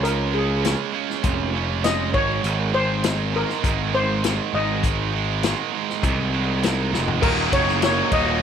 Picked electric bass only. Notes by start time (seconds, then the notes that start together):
Already playing: C#2
1.24 F1
2.14 G#1
2.44 G#1
3.64 G#1
4.54 G#1
6.03 C2
6.93 F1
7.23 D#1
7.52 F#1
8.12 D#1